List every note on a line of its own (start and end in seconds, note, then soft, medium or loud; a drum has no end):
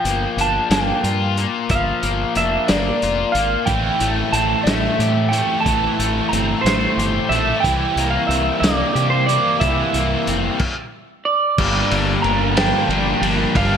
0.00 1.37 F3 medium
0.00 0.38 D4 medium
0.00 1.04 F4 medium
0.00 0.41 G5 loud
0.05 0.25 G1 medium
0.05 0.70 A#3 medium
0.05 closed hi-hat medium
0.37 0.58 G1 medium
0.37 2.03 D4 medium
0.37 closed hi-hat medium
0.41 0.72 A5 medium
0.70 0.91 G1 medium
0.70 1.37 A#3 medium
0.70 1.33 G5 medium
0.70 snare loud
0.70 closed hi-hat medium
1.04 1.45 G2 medium
1.04 2.69 F4 medium
1.04 closed hi-hat medium
1.37 2.02 A#3 medium
1.37 closed hi-hat medium
1.69 1.90 G1 loud
1.69 3.35 F3 medium
1.69 2.37 F5 medium
1.69 kick loud
1.69 closed hi-hat medium
2.03 2.23 G1 medium
2.03 2.68 A#3 medium
2.03 closed hi-hat medium
2.35 2.56 F1 medium
2.35 3.68 D4 medium
2.35 2.70 E5 medium
2.35 closed hi-hat medium
2.68 2.90 G1 medium
2.68 3.34 A#3 medium
2.68 3.30 D5 medium
2.68 snare loud
2.68 closed hi-hat medium
3.02 3.23 F1 medium
3.02 3.68 F4 medium
3.02 closed hi-hat medium
3.32 3.55 G#1 medium
3.32 3.68 A#3 medium
3.32 3.65 F5 medium
3.32 closed hi-hat medium
3.66 3.88 A1 medium
3.66 5.30 A2 medium
3.66 5.32 E3 medium
3.66 5.65 E3 medium
3.66 5.31 A3 medium
3.66 5.30 C4 medium
3.66 5.30 E4 loud
3.66 4.32 G5 loud
3.66 kick medium
3.66 closed hi-hat medium
4.00 4.21 A1 medium
4.00 4.66 A3 medium
4.00 closed hi-hat medium
4.33 4.54 A1 medium
4.33 6.31 C4 medium
4.33 4.64 A5 medium
4.33 closed hi-hat medium
4.63 4.87 A1 medium
4.63 5.31 A3 medium
4.63 5.33 E5 medium
4.63 snare loud
4.63 closed hi-hat medium
4.99 5.41 A2 medium
4.99 6.68 G4 medium
4.99 closed hi-hat medium
5.29 5.65 E3 medium
5.29 5.63 A3 medium
5.29 5.98 A3 medium
5.29 5.65 C4 medium
5.29 5.66 E4 medium
5.29 5.60 G5 loud
5.29 closed hi-hat medium
5.33 5.63 A2 medium
5.60 6.28 A5 loud
5.64 5.87 A1 medium
5.64 7.28 A2 medium
5.64 7.31 E3 medium
5.64 7.64 E3 medium
5.64 7.29 A3 medium
5.64 7.30 C4 medium
5.64 7.29 E4 medium
5.64 kick loud
5.64 closed hi-hat medium
5.99 6.20 A1 medium
5.99 6.64 A3 medium
5.99 closed hi-hat medium
6.29 6.53 G1 medium
6.29 8.01 C4 medium
6.29 6.61 A#5 medium
6.33 closed hi-hat medium
6.61 6.85 A1 medium
6.61 7.31 C5 medium
6.65 7.31 A3 medium
6.65 snare loud
6.65 closed hi-hat medium
6.97 7.18 G1 medium
6.97 8.95 G4 medium
6.97 closed hi-hat medium
7.29 7.51 A#1 medium
7.29 7.62 A2 medium
7.29 7.64 E3 medium
7.29 7.62 A3 medium
7.29 7.64 A3 medium
7.29 7.64 C4 medium
7.29 7.65 E4 medium
7.29 7.60 E5 medium
7.29 closed hi-hat soft
7.60 9.26 C3 medium
7.60 9.27 E3 medium
7.60 8.10 G5 loud
7.64 7.85 C2 loud
7.64 9.29 E3 medium
7.64 9.27 G3 medium
7.64 9.27 C4 loud
7.64 9.26 E4 medium
7.64 kick loud
7.64 closed hi-hat medium
7.96 8.17 C2 medium
7.96 8.62 A#3 medium
7.96 closed hi-hat medium
8.10 8.27 F5 medium
8.27 8.50 C2 medium
8.27 9.95 C4 medium
8.27 8.59 E5 medium
8.27 closed hi-hat medium
8.60 8.82 C2 medium
8.60 9.28 A#3 medium
8.60 9.07 D5 medium
8.60 snare loud
8.60 closed hi-hat medium
8.95 9.37 C3 medium
8.95 10.60 G4 medium
8.95 closed hi-hat medium
9.10 9.26 C5 medium
9.26 9.59 C3 medium
9.26 9.59 E3 medium
9.26 9.59 G3 medium
9.26 9.94 A#3 medium
9.26 9.59 C4 medium
9.26 9.59 E4 medium
9.26 9.59 D5 medium
9.26 closed hi-hat medium
9.60 9.82 C2 loud
9.60 10.57 C3 medium
9.60 10.57 E3 medium
9.60 10.60 E3 medium
9.60 10.58 G3 medium
9.60 10.58 C4 loud
9.60 10.58 E4 medium
9.60 10.88 E5 medium
9.60 kick loud
9.60 closed hi-hat medium
9.94 10.15 C2 medium
9.94 10.61 A#3 medium
9.94 closed hi-hat medium
10.27 10.48 F1 medium
10.27 10.60 C4 medium
10.27 closed hi-hat medium
10.59 kick loud
10.59 crash medium
11.25 12.20 D5 medium
11.58 11.82 G1 loud
11.58 13.22 G2 medium
11.58 12.57 G3 medium
11.58 11.94 A#3 loud
11.58 11.91 D4 loud
11.58 13.77 F4 medium
11.58 13.77 A#4 medium
11.58 13.53 D5 medium
11.58 13.77 G5 medium
11.58 kick loud
11.58 crash loud
11.91 12.15 G1 medium
11.91 13.55 D3 medium
11.91 12.56 A#3 medium
11.91 12.55 D4 medium
11.91 ride medium
12.22 12.71 G1 medium
12.22 12.88 A#3 medium
12.22 12.57 A#5 loud
12.22 ride medium
12.55 13.21 F3 medium
12.55 12.89 G3 medium
12.55 12.90 A#3 medium
12.55 12.92 D4 medium
12.55 13.56 G5 loud
12.55 snare loud
12.55 ride loud
12.88 13.12 G1 medium
12.88 13.53 G3 medium
12.88 13.77 A#3 medium
12.88 13.24 A#3 medium
12.88 ride medium
12.92 13.22 D4 medium
13.21 13.45 G1 medium
13.21 13.77 F3 medium
13.21 13.55 A#3 medium
13.21 13.57 D4 medium
13.21 ride medium
13.55 13.77 G1 loud
13.55 13.77 G2 medium
13.55 13.77 G3 medium
13.55 13.77 A#3 loud
13.55 13.77 D4 loud
13.55 13.77 D5 medium
13.55 13.77 F5 loud
13.55 kick loud
13.55 ride loud